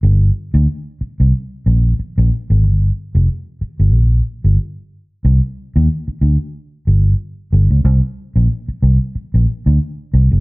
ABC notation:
X:1
M:4/4
L:1/16
Q:"Swing 16ths" 1/4=92
K:Cmix
V:1 name="Fingered electric bass" clef=bass
G,,,2 z D,, z3 C,, z2 B,,,2 z B,,, z _A,,, | G,,,2 z F,,, z3 G,,, B,,,2 z G,,, z4 | C,, z2 _E,, z2 D,, z3 G,,,2 z2 G,,, ^C,, | C,, z2 B,,, z2 C,, z2 B,,, z D,, z2 C,, ^F,,, |]